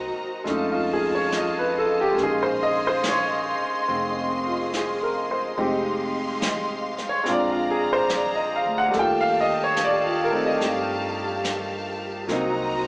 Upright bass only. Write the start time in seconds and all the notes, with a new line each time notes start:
Already playing: C2
0.18 muted upright bass stroke
0.45 F2
2.18 A#1
3.60 muted upright bass stroke
3.89 F1
5.58 F1
6.98 muted upright bass stroke
7.27 A#1
8.66 D2
8.94 D#2
10.61 G2
12.28 C2